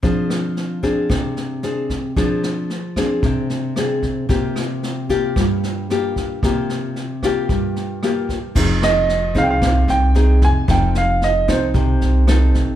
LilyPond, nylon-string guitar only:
\new Staff \with { instrumentName = "Nylon-string guitar" } { \time 4/4 \key f \dorian \tempo 4 = 113 << { <c' d' aes'>4. <c' d' aes'>4. <c' d' aes'>8 r8 | <c' d' aes'>4 r8 <c' d' aes'>4. <c' d' aes'>4 | <bes f' g'>4. <bes f' g'>4. <bes f' g'>4 | <bes f' g'>4 r8 <bes f' g'>4. <bes f' g'>8 r8 |
\key c \phrygian <c' ees' aes'>4 r8 <c' ees' aes'>4. <c' ees' aes'>4 | <c' ees' a'>4. <c' ees' a'>4. <c' ees' a'>4 | } \\ { f2 c2 | f2 c2 | c2 g,2 | c2 g,2 |
f2 c2 | f2 c2 | } >> }